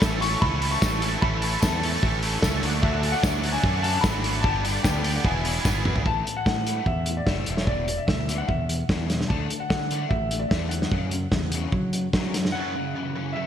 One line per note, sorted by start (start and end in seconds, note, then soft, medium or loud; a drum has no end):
0.00 0.35 A1 medium
0.00 0.20 A2 loud
0.00 0.21 E3 loud
0.00 0.22 A3 loud
0.00 0.22 C#4 loud
0.00 4.40 A4 medium
0.00 0.23 A4 loud
0.00 0.17 E5 medium
0.00 4.40 E5 medium
0.00 0.23 B5 loud
0.00 2.59 B5 medium
0.00 2.60 C#6 medium
0.00 kick loud
0.00 snare loud
0.00 tambourine medium
0.20 0.41 A2 medium
0.20 0.42 E3 medium
0.20 0.43 A3 medium
0.20 0.42 C#4 medium
0.20 0.43 A4 loud
0.20 0.40 A5 medium
0.20 0.42 C#6 loud
0.20 open hi-hat medium
0.40 0.75 C#2 medium
0.40 0.60 A2 medium
0.40 0.61 E3 medium
0.40 0.61 A3 loud
0.40 0.61 C#4 loud
0.40 0.62 A4 loud
0.40 0.69 E5 medium
0.40 0.73 B5 loud
0.40 kick loud
0.61 0.80 A2 medium
0.61 0.81 E3 medium
0.61 0.81 A3 medium
0.61 0.81 C#4 loud
0.61 0.81 A4 loud
0.61 open hi-hat medium
0.71 1.18 A5 medium
0.71 1.23 C#6 loud
0.81 1.15 A1 loud
0.81 1.00 A2 medium
0.81 1.01 E3 medium
0.81 1.02 A3 medium
0.81 1.01 C#4 loud
0.81 1.02 A4 loud
0.81 kick loud
0.81 snare loud
0.81 tambourine loud
1.01 1.21 A2 medium
1.01 1.22 E3 medium
1.01 1.23 A3 medium
1.01 1.22 C#4 medium
1.01 1.23 A4 medium
1.01 open hi-hat medium
1.21 1.56 A1 loud
1.21 1.42 A2 medium
1.21 1.43 E3 medium
1.21 1.43 A3 loud
1.21 1.42 C#4 loud
1.21 1.44 A4 loud
1.21 1.59 E5 medium
1.21 1.63 B5 loud
1.21 kick loud
1.42 1.60 A2 medium
1.42 1.62 E3 medium
1.42 1.62 A3 medium
1.42 1.62 C#4 loud
1.42 1.62 A4 medium
1.42 open hi-hat medium
1.60 1.96 E2 medium
1.60 1.81 A2 medium
1.60 1.82 E3 loud
1.60 1.83 A3 loud
1.60 1.82 C#4 loud
1.60 1.83 A4 loud
1.60 2.39 E5 medium
1.60 2.38 A5 medium
1.60 kick loud
1.60 snare loud
1.60 tambourine loud
1.82 2.01 A2 medium
1.82 2.01 E3 medium
1.82 2.03 A3 medium
1.82 2.02 C#4 loud
1.82 2.03 A4 medium
1.82 open hi-hat medium
2.02 2.36 A1 medium
2.02 2.22 A2 medium
2.02 2.23 E3 medium
2.02 2.23 A3 loud
2.02 2.23 C#4 loud
2.02 2.24 A4 loud
2.02 kick loud
2.23 2.42 A2 medium
2.23 2.42 E3 medium
2.23 2.43 A3 medium
2.23 2.43 C#4 medium
2.23 2.44 A4 loud
2.23 open hi-hat medium
2.42 2.60 C#2 loud
2.42 2.62 A2 medium
2.42 2.62 E3 medium
2.42 2.64 A3 loud
2.42 2.62 C#4 loud
2.42 2.64 A4 loud
2.42 kick loud
2.42 snare loud
2.42 tambourine medium
2.63 3.13 D2 loud
2.63 2.82 D3 medium
2.63 2.83 F#3 loud
2.63 2.83 A3 loud
2.63 2.83 D4 loud
2.63 2.83 F#4 loud
2.63 4.43 F#5 medium
2.63 4.43 D6 medium
2.63 open hi-hat medium
2.82 3.03 D3 loud
2.82 3.03 F#3 loud
2.82 3.03 A3 loud
2.82 3.03 D4 loud
2.82 3.04 F#4 loud
2.82 3.04 A4 medium
2.82 3.07 E5 medium
2.82 kick loud
3.03 3.23 D3 medium
3.03 3.23 F#3 medium
3.03 3.23 A3 medium
3.03 3.24 D4 medium
3.03 3.24 F#4 medium
3.03 3.12 E5 medium
3.03 3.13 G#5 medium
3.03 open hi-hat medium
3.12 3.51 D5 medium
3.12 3.50 F#5 loud
3.23 3.57 D2 medium
3.23 3.44 D3 loud
3.23 3.44 F#3 loud
3.23 3.44 A3 loud
3.23 3.45 D4 loud
3.23 3.45 F#4 loud
3.23 kick loud
3.23 snare loud
3.23 tambourine loud
3.44 3.63 D3 medium
3.44 3.64 F#3 medium
3.44 3.64 A3 medium
3.44 3.64 D4 loud
3.44 3.64 F#4 loud
3.44 open hi-hat medium
3.52 3.81 E5 medium
3.52 3.84 G#5 loud
3.64 3.97 F#2 loud
3.64 3.83 D3 medium
3.64 3.83 F#3 medium
3.64 3.83 A3 loud
3.64 3.84 D4 loud
3.64 3.84 F#4 loud
3.64 kick loud
3.82 4.03 D3 medium
3.82 4.04 F#3 medium
3.82 4.04 A3 medium
3.82 4.04 D4 loud
3.82 4.04 F#4 medium
3.82 4.02 F#5 medium
3.82 4.04 A5 loud
3.82 open hi-hat medium
4.01 4.44 G#1 loud
4.01 4.23 D3 loud
4.01 4.24 F#3 loud
4.01 4.41 F#5 loud
4.01 4.44 B5 loud
4.01 kick loud
4.01 snare loud
4.01 tambourine loud
4.05 4.24 A3 loud
4.05 4.24 D4 loud
4.05 4.24 F#4 loud
4.24 4.43 D3 medium
4.24 4.43 F#3 medium
4.24 4.44 A3 medium
4.24 4.44 D4 medium
4.24 4.44 F#4 medium
4.24 open hi-hat medium
4.41 4.77 G1 loud
4.41 4.63 G2 loud
4.41 4.64 D3 loud
4.41 4.64 G3 loud
4.41 4.64 B3 loud
4.41 4.64 D4 loud
4.41 4.81 D5 medium
4.41 4.80 A5 loud
4.41 kick loud
4.45 4.65 G4 loud
4.45 5.25 A4 medium
4.45 5.25 D5 medium
4.45 5.25 G5 medium
4.45 6.05 B5 medium
4.65 4.83 G2 medium
4.65 4.84 D3 medium
4.65 4.84 G3 medium
4.65 4.84 B3 medium
4.65 4.85 D4 medium
4.65 4.85 G4 medium
4.65 open hi-hat medium
4.82 5.18 D2 medium
4.82 5.03 G2 medium
4.82 5.04 D3 loud
4.82 5.04 G3 medium
4.82 5.04 B3 loud
4.82 5.04 D4 loud
4.82 5.05 G4 loud
4.82 5.14 D5 medium
4.82 5.15 G5 medium
4.82 kick loud
4.82 snare loud
4.82 tambourine loud
5.04 5.23 G2 medium
5.04 5.24 D3 medium
5.04 5.24 G3 medium
5.04 5.23 B3 medium
5.04 5.24 D4 medium
5.04 5.24 G4 loud
5.04 open hi-hat medium
5.15 5.24 D5 medium
5.15 5.24 F#5 medium
5.23 5.58 E1 medium
5.23 5.43 E2 medium
5.23 5.43 B2 loud
5.23 5.43 E3 medium
5.23 5.43 B3 loud
5.23 5.44 E4 loud
5.23 5.44 G#4 medium
5.23 6.05 G#4 medium
5.23 6.05 B4 medium
5.23 5.81 E5 medium
5.23 6.05 E5 medium
5.23 5.81 G#5 medium
5.23 kick loud
5.44 5.64 E2 medium
5.44 5.64 B2 medium
5.44 5.65 E3 loud
5.44 5.65 B3 loud
5.44 5.65 E4 medium
5.44 5.65 G#4 medium
5.44 open hi-hat medium
5.65 5.98 G#1 loud
5.65 5.85 E2 loud
5.65 5.86 B2 medium
5.65 5.86 E3 medium
5.65 5.86 B3 loud
5.65 5.86 E4 medium
5.65 5.87 G#4 loud
5.65 kick loud
5.65 snare medium
5.65 tambourine medium
5.85 6.05 E2 medium
5.85 6.05 B2 medium
5.85 6.05 E3 medium
5.85 6.05 B3 medium
5.85 6.05 E4 medium
5.85 6.06 G#4 medium
5.85 mid tom medium
5.96 floor tom loud
6.06 6.22 A1 medium
6.06 6.25 A2 medium
6.06 6.25 E3 medium
6.06 6.25 A3 medium
6.06 6.37 A5 loud
6.06 kick loud
6.26 6.44 A2 medium
6.26 6.44 E3 medium
6.26 closed hi-hat medium
6.37 6.46 F#5 medium
6.45 6.64 A2 medium
6.45 6.80 A2 medium
6.45 6.64 E3 medium
6.45 6.88 F#5 medium
6.45 kick loud
6.45 snare loud
6.66 6.85 A2 medium
6.66 6.85 E3 medium
6.66 6.86 A3 medium
6.66 closed hi-hat medium
6.86 7.20 E2 medium
6.86 7.05 A2 medium
6.86 7.05 E3 medium
6.86 7.18 E5 medium
6.86 kick loud
7.06 7.26 A2 medium
7.06 7.26 E3 medium
7.06 closed hi-hat medium
7.17 7.26 D5 medium
7.26 7.44 F#1 medium
7.26 7.46 A2 medium
7.26 7.46 E3 medium
7.26 7.46 A3 medium
7.26 7.58 E5 medium
7.26 kick loud
7.26 snare loud
7.46 7.98 E1 medium
7.46 7.66 E2 medium
7.46 7.67 B2 medium
7.46 7.67 E3 medium
7.46 closed hi-hat medium
7.57 7.67 C#5 medium
7.57 snare medium
7.67 7.87 E2 medium
7.67 7.87 B2 medium
7.67 7.87 E3 medium
7.67 7.99 D5 medium
7.67 kick loud
7.88 8.06 E2 medium
7.88 8.07 B2 medium
7.88 closed hi-hat medium
7.98 8.05 E5 medium
8.07 8.41 D2 medium
8.07 8.27 E2 medium
8.07 8.27 B2 medium
8.07 8.36 E5 medium
8.07 kick loud
8.07 snare loud
8.28 8.47 E2 medium
8.28 8.48 B2 medium
8.28 8.48 E3 medium
8.28 closed hi-hat medium
8.38 8.49 F#5 medium
8.48 8.82 E2 medium
8.48 8.67 E2 medium
8.48 8.68 B2 medium
8.48 9.05 E5 medium
8.48 kick loud
8.69 8.88 E2 medium
8.69 8.88 B2 medium
8.69 closed hi-hat medium
8.89 9.23 E2 medium
8.89 9.09 E2 medium
8.89 9.09 B2 medium
8.89 9.09 E3 medium
8.89 kick medium
8.89 snare loud
9.10 9.28 E2 medium
9.10 9.28 B2 medium
9.10 snare medium
9.10 closed hi-hat medium
9.21 snare medium
9.29 9.47 D2 medium
9.29 9.49 D3 medium
9.29 9.49 A3 medium
9.29 9.50 D4 loud
9.29 9.57 A5 medium
9.29 kick loud
9.50 9.69 D3 medium
9.50 9.69 A3 medium
9.50 closed hi-hat medium
9.60 9.68 F#5 medium
9.69 10.04 D3 loud
9.69 9.89 D3 medium
9.69 9.89 A3 medium
9.69 10.12 F#5 medium
9.69 kick loud
9.69 snare loud
9.91 10.09 D3 medium
9.91 10.10 A3 medium
9.91 10.10 D4 medium
9.91 closed hi-hat medium
10.09 10.44 A1 medium
10.09 10.29 D3 medium
10.09 10.29 A3 medium
10.09 10.41 E5 medium
10.09 kick loud
10.31 10.50 D3 medium
10.31 10.50 A3 medium
10.31 closed hi-hat medium
10.39 10.51 D5 medium
10.49 10.85 E2 medium
10.49 10.71 D3 medium
10.49 10.54 E5 medium
10.49 kick loud
10.49 snare loud
10.53 10.71 A3 medium
10.53 10.71 D4 medium
10.69 12.08 F#5 medium
10.69 closed hi-hat medium
10.73 10.91 D3 medium
10.73 10.91 A3 medium
10.82 snare medium
10.92 11.11 F#2 medium
10.92 11.25 F#2 medium
10.92 11.11 C#3 medium
10.92 11.12 F#3 loud
10.92 kick loud
11.11 11.31 F#2 medium
11.11 11.31 C#3 medium
11.11 closed hi-hat medium
11.32 11.66 E2 medium
11.32 11.51 F#2 medium
11.32 11.51 C#3 medium
11.32 kick loud
11.32 snare loud
11.52 11.72 F#2 medium
11.52 11.73 C#3 medium
11.52 11.73 F#3 medium
11.52 closed hi-hat medium
11.72 11.92 F#2 medium
11.72 11.92 C#3 medium
11.72 12.06 F#3 medium
11.72 kick loud
11.93 12.12 F#2 medium
11.93 12.12 C#3 medium
11.93 closed hi-hat medium
12.13 12.33 F#2 medium
12.13 12.33 C#3 medium
12.13 12.47 F#3 medium
12.13 12.34 F#3 medium
12.13 kick loud
12.13 snare loud
12.34 12.53 F#2 medium
12.34 12.53 C#3 medium
12.34 snare medium
12.34 closed hi-hat medium
12.45 snare medium
12.52 13.47 F#2 medium
12.52 12.74 C#3 medium
12.52 12.74 F#3 loud
12.52 13.37 F#5 loud
12.76 12.93 F#2 medium
12.76 13.47 C#3 medium
12.95 13.13 F#2 medium
12.95 13.14 C#3 medium
12.95 13.47 E3 medium
13.15 13.33 F#2 medium
13.15 13.34 C#3 medium
13.15 13.47 C#4 medium
13.33 13.47 F#2 medium
13.33 13.47 C#3 medium
13.33 13.47 A3 medium
13.33 13.47 E5 medium